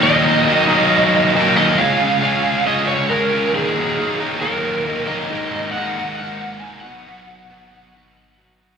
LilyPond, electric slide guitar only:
\new Staff \with { instrumentName = "Electric slide guitar" } { \time 4/4 \key ees \minor \tempo 4 = 136 ees''2. r8 ees''8 | f''4 f''4 ees''8 des''8 bes'4 | aes'4. r8 bes'4. ees''8~ | ees''4 ges''4 ges''4 aes''8 fis''8~ |
fis''2.~ fis''8 r8 | }